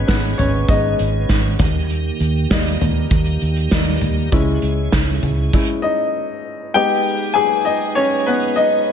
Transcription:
0.00 0.70 G#3 medium
0.00 1.56 G#3 medium
0.00 0.10 B3 medium
0.00 0.40 C#4 medium
0.00 1.57 C#4 medium
0.00 0.70 D#4 medium
0.00 0.07 B4 medium
0.00 1.56 B4 medium
0.00 0.38 C#5 medium
0.00 0.69 D#5 medium
0.07 0.33 G#1 medium
0.07 0.37 B3 medium
0.07 0.39 B4 medium
0.07 kick medium
0.07 snare loud
0.07 closed hi-hat medium
0.38 0.64 G#1 loud
0.38 0.67 C#4 medium
0.38 0.69 C#5 medium
0.38 closed hi-hat medium
0.38 floor tom medium
0.69 0.94 G#1 medium
0.69 0.96 G#3 soft
0.69 0.97 B3 soft
0.69 1.57 D#4 medium
0.69 1.55 D#5 medium
0.69 kick loud
0.69 closed hi-hat medium
0.99 1.24 G#1 medium
0.99 closed hi-hat medium
1.29 1.54 G#1 loud
1.29 kick loud
1.29 snare loud
1.29 closed hi-hat medium
1.59 2.09 D#2 medium
1.59 4.30 D#3 medium
1.59 4.30 A#3 medium
1.59 4.30 G4 medium
1.59 kick loud
1.59 snare soft
1.59 closed hi-hat medium
1.59 floor tom medium
1.90 closed hi-hat medium
2.20 2.45 D#2 loud
2.20 closed hi-hat medium
2.51 2.76 D#2 medium
2.51 2.91 G3 soft
2.51 2.91 A#3 soft
2.51 2.91 D#4 medium
2.51 kick medium
2.51 snare medium
2.51 closed hi-hat medium
2.81 3.06 D#2 medium
2.81 closed hi-hat medium
2.81 floor tom medium
3.11 3.36 D#2 medium
3.11 kick loud
3.11 closed hi-hat medium
3.26 closed hi-hat soft
3.42 3.67 D#2 medium
3.42 closed hi-hat medium
3.56 closed hi-hat soft
3.71 3.97 D#2 medium
3.71 3.99 G3 soft
3.71 3.99 A#3 soft
3.71 3.99 D#4 soft
3.71 kick loud
3.71 snare loud
3.71 closed hi-hat medium
4.01 4.27 D#2 loud
4.01 closed hi-hat medium
4.01 floor tom medium
4.32 4.57 C#2 medium
4.32 5.52 C#3 medium
4.32 5.19 G#3 medium
4.32 5.52 G#3 medium
4.32 5.19 C#4 medium
4.32 5.53 E4 medium
4.32 5.20 E4 medium
4.32 kick loud
4.32 closed hi-hat medium
4.62 4.87 C#2 loud
4.62 closed hi-hat medium
4.92 5.18 C#2 medium
4.92 kick loud
4.92 snare loud
4.92 closed hi-hat medium
5.23 5.48 C#2 medium
5.23 closed hi-hat medium
5.23 floor tom medium
5.53 5.81 G#3 soft
5.53 5.81 C#4 soft
5.53 5.81 E4 soft
5.53 kick loud
5.53 crash medium
5.82 6.71 D#4 medium
5.82 6.77 D#5 medium
6.74 7.15 G#3 medium
6.74 8.92 G#3 medium
6.74 7.15 B3 medium
6.74 8.92 D#4 medium
6.74 7.15 D#4 medium
6.74 7.32 G4 medium
6.74 8.92 B4 medium
6.74 7.31 G5 loud
7.34 7.63 G#4 medium
7.34 7.66 G#5 loud
7.65 7.94 D#4 medium
7.65 7.96 D#5 medium
7.95 8.25 C#4 medium
7.95 8.27 C#5 medium
8.27 8.55 B3 medium
8.27 8.58 B4 medium
8.56 8.92 D#4 medium
8.56 8.92 D#5 loud

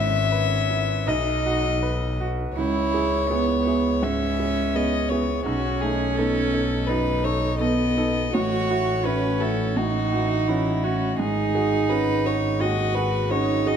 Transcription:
0.00 1.08 G#1 loud
0.00 1.03 G#2 medium
0.00 1.10 C#4 medium
0.00 0.55 E4 medium
0.00 1.03 E5 loud
0.00 1.09 E5 loud
0.32 0.93 B4 medium
0.70 1.08 E4 medium
1.07 2.56 B1 medium
1.07 2.52 B1 medium
1.07 2.20 D#4 medium
1.07 2.15 D#5 medium
1.07 2.20 D#5 medium
1.46 2.05 F#4 medium
1.83 2.42 B4 medium
2.20 2.57 F#4 medium
2.57 5.48 C#2 medium
2.57 2.93 C#2 medium
2.57 3.32 E4 loud
2.57 4.04 C#5 medium
2.94 3.27 E4 medium
2.94 3.27 G#4 medium
3.30 4.04 B3 medium
3.30 3.63 B3 medium
3.30 3.63 E4 soft
3.30 3.63 G#4 medium
3.67 3.99 E4 soft
3.67 3.99 G#4 medium
4.03 4.37 G#2 medium
4.03 5.12 C#4 medium
4.03 4.77 E5 medium
4.39 4.71 E4 soft
4.39 4.72 G#4 medium
4.74 5.06 B3 medium
4.74 5.07 E4 soft
4.74 5.07 G#4 medium
4.74 5.10 D#5 medium
5.09 5.46 B3 medium
5.09 5.42 E4 medium
5.09 5.43 G#4 medium
5.09 5.45 C#5 medium
5.46 5.80 B1 medium
5.46 8.35 B1 medium
5.46 6.90 C#4 loud
5.46 5.82 F#4 medium
5.81 6.14 A3 medium
5.81 6.14 D#4 medium
5.81 6.19 G#4 medium
6.17 6.50 B3 medium
6.17 6.50 D#4 soft
6.17 6.89 A4 medium
6.17 6.50 A4 medium
6.53 6.85 D#4 soft
6.53 6.86 A4 medium
6.87 7.24 F#2 medium
6.87 7.61 D#4 medium
6.87 7.26 B4 medium
7.24 7.57 D#4 medium
7.24 7.57 A4 medium
7.24 7.59 C#5 medium
7.60 8.33 B3 medium
7.60 7.93 B3 soft
7.60 7.93 D#4 medium
7.60 7.93 A4 medium
7.60 8.35 D#5 medium
7.97 8.30 D#4 medium
7.97 8.30 A4 medium
8.33 11.21 A1 medium
8.33 8.69 A2 medium
8.33 9.07 F#4 loud
8.33 9.06 C#5 medium
8.71 9.02 E4 medium
8.71 9.02 F#4 medium
9.05 9.79 C#4 medium
9.05 9.37 C#4 soft
9.05 9.37 E4 medium
9.05 9.38 F#4 medium
9.05 9.42 B4 medium
9.40 9.73 E4 soft
9.40 9.73 F#4 soft
9.40 9.78 A4 medium
9.76 10.11 A2 medium
9.76 10.85 D#4 medium
9.76 10.49 F#4 medium
10.12 10.44 E3 medium
10.12 10.44 F#4 medium
10.48 10.80 E3 soft
10.48 10.80 C#4 soft
10.48 10.85 E4 medium
10.48 10.80 F#4 medium
10.84 11.19 C#4 medium
10.84 11.15 E4 medium
10.84 11.19 F#4 medium
10.84 11.15 F#4 medium
11.19 13.77 G#1 medium
11.19 11.53 G#2 medium
11.19 12.62 D#4 loud
11.19 11.91 G#4 medium
11.55 11.86 F#4 medium
11.55 11.86 G#4 medium
11.89 12.22 C#4 medium
11.89 12.22 F#4 soft
11.89 12.22 G#4 medium
11.89 12.27 B4 medium
12.25 12.57 F#4 soft
12.25 12.57 G#4 medium
12.25 12.62 C#5 medium
12.60 12.95 D#2 medium
12.60 13.33 F#4 loud
12.60 12.97 D#5 medium
12.95 13.28 F#4 medium
12.95 13.28 G#4 medium
12.95 13.32 B4 medium
13.31 13.63 C#4 medium
13.31 13.77 D#4 medium
13.31 13.63 F#4 medium
13.31 13.63 G#4 medium
13.31 13.69 C#5 medium
13.66 13.77 F#4 soft
13.66 13.77 G#4 medium
13.66 13.77 D#5 medium

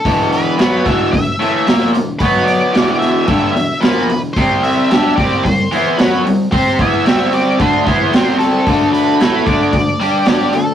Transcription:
0.00 0.32 A4 medium
0.05 0.58 E2 medium
0.05 0.57 B2 medium
0.05 0.58 E3 medium
0.05 kick loud
0.05 open hi-hat medium
0.33 0.87 B4 medium
0.33 open hi-hat soft
0.58 0.84 B2 loud
0.58 0.84 F#3 loud
0.58 0.85 B3 loud
0.58 snare loud
0.58 open hi-hat medium
0.85 1.11 E2 medium
0.85 1.12 B2 loud
0.85 1.12 E3 loud
0.85 1.11 E5 medium
0.85 kick medium
0.85 open hi-hat medium
1.12 1.34 E2 medium
1.12 1.34 B2 medium
1.12 1.89 E5 medium
1.12 kick medium
1.12 open hi-hat medium
1.40 1.65 A2 medium
1.40 1.66 E3 medium
1.40 1.67 A3 medium
1.40 open hi-hat medium
1.67 1.93 A#2 medium
1.67 1.93 F3 medium
1.67 1.93 A#3 medium
1.67 snare loud
1.67 open hi-hat medium
1.94 2.15 E2 medium
1.94 2.16 B2 medium
1.94 open hi-hat medium
2.19 2.73 B2 medium
2.19 2.74 F#3 loud
2.19 2.74 B3 loud
2.19 2.47 B4 medium
2.19 kick medium
2.19 open hi-hat medium
2.44 2.99 D5 loud
2.44 open hi-hat medium
2.73 3.27 E2 medium
2.73 3.27 B2 loud
2.73 3.28 E3 loud
2.73 snare loud
2.73 open hi-hat medium
2.99 3.26 E5 medium
2.99 open hi-hat medium
3.27 3.54 G2 medium
3.27 3.54 D3 loud
3.27 3.55 G3 medium
3.27 3.51 E5 loud
3.27 kick medium
3.27 open hi-hat medium
3.52 3.77 E2 medium
3.52 3.77 B2 medium
3.52 3.81 E5 loud
3.56 open hi-hat soft
3.81 4.08 A#2 medium
3.81 4.09 F3 medium
3.81 4.09 A#3 medium
3.81 4.19 B4 medium
3.81 snare loud
3.81 open hi-hat medium
4.09 4.31 E2 medium
4.09 4.31 B2 medium
4.09 open hi-hat soft
4.34 4.90 C3 medium
4.34 4.63 C5 medium
4.34 kick loud
4.34 open hi-hat medium
4.38 4.90 G3 loud
4.38 4.91 C4 loud
4.63 4.88 E5 medium
4.63 open hi-hat medium
4.90 5.16 G3 loud
4.90 5.17 D4 loud
4.90 5.18 G4 medium
4.90 5.16 E5 medium
4.90 snare loud
4.90 open hi-hat medium
5.16 5.43 C3 medium
5.16 5.43 G3 medium
5.16 5.44 C4 loud
5.16 5.44 D5 medium
5.16 kick loud
5.16 open hi-hat medium
5.43 5.66 C3 medium
5.43 5.66 G3 medium
5.43 5.96 C5 medium
5.43 kick medium
5.43 open hi-hat medium
5.72 5.97 E3 medium
5.72 5.98 B3 medium
5.72 5.98 E4 loud
5.72 open hi-hat medium
5.96 6.24 F#3 medium
5.96 6.24 C#4 medium
5.96 6.25 F#4 medium
5.96 6.20 B4 medium
5.96 snare loud
5.96 open hi-hat medium
6.25 6.46 C3 medium
6.25 6.47 G3 medium
6.25 open hi-hat medium
6.52 6.78 C4 medium
6.52 6.79 G4 medium
6.52 6.79 C5 loud
6.52 kick loud
6.52 open hi-hat medium
6.79 7.05 E3 medium
6.79 7.05 B3 loud
6.79 7.06 E4 medium
6.79 7.34 E5 loud
6.79 kick loud
6.79 open hi-hat medium
7.06 7.58 C3 medium
7.06 7.58 G3 loud
7.06 7.59 C4 loud
7.06 snare loud
7.06 open hi-hat medium
7.33 7.61 D5 medium
7.33 open hi-hat soft
7.58 7.85 D3 medium
7.58 7.85 A3 loud
7.58 7.86 D4 medium
7.58 8.36 C5 medium
7.58 kick loud
7.58 open hi-hat medium
7.86 8.12 E3 loud
7.86 8.12 B3 medium
7.86 8.13 E4 loud
7.86 kick loud
7.86 open hi-hat medium
8.12 8.65 C3 medium
8.12 8.66 G3 medium
8.12 8.67 C4 loud
8.12 snare loud
8.12 open hi-hat medium
8.38 8.93 A4 loud
8.38 open hi-hat medium
8.67 9.19 D3 medium
8.67 9.19 A3 loud
8.67 9.21 D4 loud
8.67 kick loud
8.67 open hi-hat medium
8.93 9.48 B4 loud
8.93 open hi-hat medium
9.20 9.46 A3 medium
9.20 9.46 E4 loud
9.20 9.47 A4 loud
9.20 snare loud
9.20 open hi-hat medium
9.45 9.71 D3 loud
9.45 9.72 A3 medium
9.45 9.73 D4 loud
9.45 9.71 D5 medium
9.45 kick loud
9.45 open hi-hat medium
9.72 9.94 D3 medium
9.72 9.95 A3 medium
9.72 10.55 D5 loud
9.72 kick medium
9.72 open hi-hat medium
10.00 10.25 G3 medium
10.00 10.27 D4 loud
10.00 10.27 G4 loud
10.00 open hi-hat medium
10.26 10.52 G3 medium
10.26 10.53 D4 medium
10.26 10.53 G4 medium
10.26 snare loud
10.26 open hi-hat medium
10.53 10.74 D3 medium
10.53 10.74 A3 medium
10.53 10.74 A4 medium
10.53 open hi-hat medium

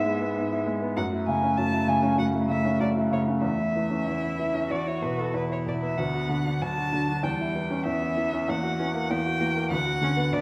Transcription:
0.00 0.36 G#2 soft
0.00 0.06 G#3 soft
0.00 0.21 B3 soft
0.00 0.97 B3 soft
0.00 0.51 E4 soft
0.00 0.63 E5 medium
0.06 0.30 G#3 soft
0.21 0.45 B3 soft
0.36 0.95 G#2 soft
0.51 0.76 E4 soft
0.66 0.91 G#3 soft
0.82 0.97 B3 soft
0.96 1.56 F#2 soft
0.96 4.01 A3 soft
0.96 1.04 F#5 medium
1.13 1.36 E4 soft
1.27 1.52 C#3 soft
1.27 1.59 G#5 medium
1.43 1.67 C#4 soft
1.57 2.16 F#2 soft
1.57 1.90 A5 medium
1.72 1.97 E4 soft
1.88 2.12 C#3 soft
1.88 2.18 G#5 medium
2.03 2.27 C#4 soft
2.18 2.79 F#2 soft
2.18 2.27 F#5 medium
2.33 2.59 E4 soft
2.49 2.74 C#3 soft
2.49 2.80 E5 medium
2.65 2.90 C#4 soft
2.80 3.42 F#2 soft
2.80 2.89 D5 medium
2.97 3.22 E4 soft
3.12 3.37 C#3 soft
3.12 3.21 C#5 soft
3.28 3.44 C#4 soft
3.42 4.06 E2 soft
3.42 4.73 E5 medium
3.59 3.85 E4 soft
3.76 4.01 E3 soft
3.90 4.16 C#4 soft
4.06 4.69 E2 soft
4.06 4.67 E4 soft
4.23 4.49 E4 soft
4.39 4.65 E3 soft
4.54 4.71 C#4 soft
4.70 5.33 E2 soft
4.70 5.35 F#4 soft
4.70 4.89 D5 medium
4.87 5.13 E4 soft
4.87 5.05 C#5 soft
5.02 5.28 B2 soft
5.02 5.21 B4 soft
5.18 5.44 B3 soft
5.18 5.35 A4 soft
5.34 5.97 E2 soft
5.34 5.98 E4 soft
5.34 5.42 B4 medium
5.50 5.76 E4 soft
5.50 5.58 C#5 soft
5.66 5.92 B2 soft
5.66 5.74 D5 soft
5.82 5.99 B3 soft
5.82 6.00 E5 soft
5.98 6.60 D2 soft
5.98 6.58 B3 soft
5.98 6.63 F#5 medium
6.14 6.40 F#4 soft
6.29 6.55 D3 soft
6.46 6.71 D4 soft
6.61 7.23 D2 soft
6.61 7.25 F#3 soft
6.61 7.25 A5 medium
6.78 7.03 F#4 soft
6.93 7.18 D3 soft
7.08 7.24 D4 soft
7.23 7.84 E2 soft
7.23 7.85 G3 soft
7.23 7.85 G5 medium
7.40 7.65 E4 soft
7.55 7.80 E3 soft
7.70 7.96 C#4 soft
7.86 8.46 E2 soft
7.86 8.50 B3 soft
7.86 8.51 E5 medium
8.02 8.27 E4 soft
8.17 8.42 E3 soft
8.33 8.49 C#4 soft
8.48 9.09 E2 medium
8.48 8.78 A#3 soft
8.48 9.12 F#5 medium
8.63 8.88 F#4 soft
8.78 9.04 E3 soft
8.78 8.86 C#4 soft
8.94 9.19 A#3 soft
9.10 9.70 E2 soft
9.10 9.18 B3 soft
9.10 9.70 G5 medium
9.25 9.50 F#4 soft
9.40 9.65 E3 soft
9.40 9.48 A#3 medium
9.55 9.71 A#3 soft
9.70 10.31 D2 medium
9.70 9.78 B3 medium
9.70 10.35 F#5 medium
9.86 10.11 F#4 soft
10.02 10.26 D3 soft
10.02 10.11 C#4 medium
10.17 10.41 B3 soft
10.32 10.41 D2 soft
10.32 10.41 B3 medium
10.32 10.41 D5 medium

